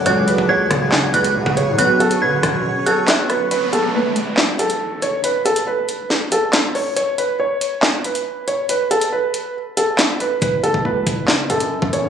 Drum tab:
HH |x-x---x---xx--x-|x-xx--x---x-x-x-|x-x---x---xx--x-|x-xx--x---x-x-o-|
CP |--------x-------|------------x---|--------x-------|------------x---|
SD |------r-o-------|------r-----o-r-|--------o-------|--------o---o---|
BD |o--o--o------o--|------o---------|----------------|----------------|

HH |x-x---x---xx--x-|x-xx--x---x-x-x-|x-x---x---xx--x-|
CP |--------x-------|------------x---|--------x-------|
SD |--------o-------|------------o---|--------o-------|
BD |----------------|----------------|o--o--o------o--|